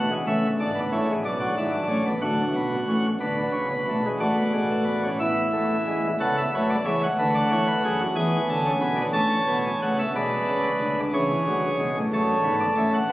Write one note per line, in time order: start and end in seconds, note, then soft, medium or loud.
0.00 0.15 B1 medium
0.00 0.15 B2 medium
0.00 0.13 F#5 medium
0.11 0.24 G#3 medium
0.27 0.47 A1 medium
0.27 0.47 A2 medium
0.27 0.69 A3 medium
0.27 0.47 C#4 medium
0.27 0.47 E5 medium
0.60 0.80 G#1 medium
0.60 0.79 G#2 medium
0.60 0.80 D4 medium
0.60 0.80 D5 medium
0.75 0.89 B3 medium
0.92 1.12 A1 medium
0.92 1.12 A2 medium
0.92 1.06 A3 medium
0.92 1.12 E4 medium
0.92 1.12 C#5 medium
1.10 1.23 G#3 medium
1.25 1.45 B1 medium
1.25 1.45 B2 medium
1.25 2.08 F#3 medium
1.25 1.38 D4 medium
1.25 2.08 D5 medium
1.41 1.54 F#4 medium
1.57 1.77 G#1 medium
1.57 1.77 G#2 medium
1.57 1.71 E4 medium
1.72 1.86 D4 medium
1.89 2.09 A1 medium
1.89 2.09 A2 medium
1.89 2.03 C#4 medium
2.06 2.19 B3 medium
2.22 2.42 D2 medium
2.22 2.42 D3 medium
2.22 2.42 A3 medium
2.22 3.06 F#4 medium
2.22 3.06 F#5 medium
2.55 2.75 B1 medium
2.55 2.75 B2 medium
2.55 2.75 B3 medium
2.88 3.08 A1 medium
2.88 3.09 A2 medium
2.88 3.08 C#4 medium
3.20 3.41 D2 medium
3.20 3.41 D3 medium
3.20 3.34 B3 medium
3.20 3.36 D4 medium
3.20 4.07 B4 medium
3.38 3.51 D4 medium
3.53 3.74 C#2 medium
3.53 3.74 C#3 medium
3.53 3.67 C#4 medium
3.70 3.84 B3 medium
3.88 4.09 B1 medium
3.88 4.09 B2 medium
3.88 4.02 A3 medium
4.05 4.19 G#3 medium
4.20 5.07 A1 medium
4.20 5.07 A2 medium
4.20 4.35 A3 medium
4.20 5.08 F#4 medium
4.20 5.08 D5 medium
4.38 4.52 B3 medium
4.53 4.68 G#3 medium
4.70 4.85 A3 medium
4.85 5.01 B3 medium
5.04 5.19 C#4 medium
5.20 6.07 E2 medium
5.20 6.07 E3 medium
5.20 5.42 B3 medium
5.20 6.08 E4 medium
5.20 6.07 E5 medium
5.53 5.75 A3 medium
5.87 6.09 G#3 medium
6.20 6.42 C#2 medium
6.20 6.41 C#3 medium
6.20 6.42 B3 medium
6.20 6.41 A4 medium
6.20 6.36 F#5 medium
6.38 6.52 E5 medium
6.54 6.75 F#2 medium
6.54 6.75 F#3 medium
6.54 6.75 A3 medium
6.54 6.75 B4 medium
6.54 6.69 C#5 medium
6.70 6.85 D5 medium
6.85 7.07 E2 medium
6.85 7.07 E3 medium
6.85 7.06 G#3 medium
6.85 7.06 C#5 medium
6.85 7.01 E5 medium
7.04 8.02 F#5 medium
7.19 7.40 D2 medium
7.19 7.40 D3 medium
7.19 8.04 A3 medium
7.19 7.34 B4 medium
7.35 7.50 D5 medium
7.52 7.73 E2 medium
7.52 7.73 E3 medium
7.52 7.67 C#5 medium
7.68 7.83 B4 medium
7.85 8.05 F#2 medium
7.85 8.05 F#3 medium
7.85 7.99 G#4 medium
8.01 8.15 F#4 medium
8.16 8.37 E2 medium
8.16 8.37 E3 medium
8.16 8.59 B3 medium
8.16 8.37 G#4 loud
8.16 9.01 G#5 medium
8.49 8.70 D2 medium
8.49 8.70 D3 medium
8.49 8.70 A4 loud
8.66 8.81 C#4 medium
8.81 9.03 B1 medium
8.81 9.02 B2 medium
8.81 8.97 B3 medium
8.81 9.02 B4 loud
8.96 9.12 D4 medium
9.13 9.35 A1 medium
9.13 9.35 A2 medium
9.13 9.35 C#4 medium
9.13 10.00 C#5 loud
9.13 9.57 A5 medium
9.47 9.69 B1 medium
9.47 9.69 B2 medium
9.47 9.69 B3 medium
9.65 9.80 G#5 medium
9.82 10.03 C#2 medium
9.82 10.03 C#3 medium
9.82 10.03 A3 medium
9.82 9.97 F#5 medium
9.99 10.13 E5 medium
10.15 10.36 B1 medium
10.15 10.36 B2 medium
10.15 11.00 G#3 medium
10.15 11.00 B4 medium
10.15 11.00 D5 medium
10.50 10.70 C#2 medium
10.50 10.69 C#3 medium
10.82 11.02 D2 medium
10.82 11.02 D3 medium
11.13 11.28 C#2 medium
11.13 11.27 C#3 medium
11.13 11.29 E3 medium
11.13 11.98 G#4 medium
11.13 11.97 C#5 medium
11.30 11.44 E2 medium
11.30 11.45 E3 medium
11.47 11.61 D2 medium
11.47 11.61 D3 medium
11.47 11.67 F#3 medium
11.62 11.77 C#2 medium
11.62 11.76 C#3 medium
11.79 11.93 B1 medium
11.79 11.93 B2 medium
11.79 11.99 G#3 medium
11.97 12.10 A1 medium
11.97 12.10 A2 medium
12.13 12.33 F#1 medium
12.13 12.33 F#2 medium
12.13 12.33 A3 medium
12.13 12.95 A4 medium
12.13 12.54 C#5 medium
12.44 12.64 G#1 medium
12.44 12.64 G#2 medium
12.44 12.64 B3 medium
12.60 12.74 D5 medium
12.77 12.97 A1 medium
12.77 12.97 A2 medium
12.77 12.97 C#4 medium
12.77 12.91 E5 medium
12.94 13.12 F#5 medium
13.09 13.12 B2 medium